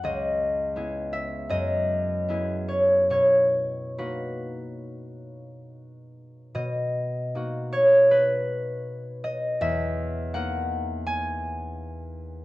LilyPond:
\new Staff \with { instrumentName = "Harp" } { \time 4/4 \key b \major \tempo 4 = 79 << { <dis'' e'' gis''>4. e''8 dis''4. cis''8 | cis''4 b'2. | dis''4. cis''8 b'4. dis''8 | e''4 fis''4 gis''2 | } \\ { <cis, gis'>4 <b e' gis'>4 fis,4 <b e' gis'>4 | b,4 <ais dis' fis'>2. | b,4 <ais dis' fis'>2. | e,4 <ais dis' ais'>2. | } >> }